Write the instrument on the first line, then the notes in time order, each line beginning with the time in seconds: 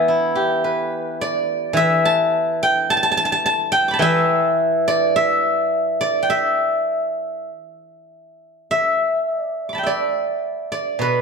guzheng
Already playing: E3 G3 B3 E5 G5 A5
0.08 E4
0.35 G4
0.64 B4
1.21 D5
1.73 E3 E5
2.05 A5
2.63 G5
2.90 A5
2.97 A5
3.03 A5
3.12 A5
3.17 A5
3.25 A5
3.32 A5
3.46 A5
3.72 G5
3.88 B5 D6
3.94 A5
3.99 E3 E5 G5
4.88 D5
5.16 E5
6.01 D5
6.23 G5
6.30 E5
8.71 E5
9.29 D#5
9.42 D5
9.69 B5 D6
9.75 G5 A5
9.83 D5 E5
10.72 D5
10.99 B2 B4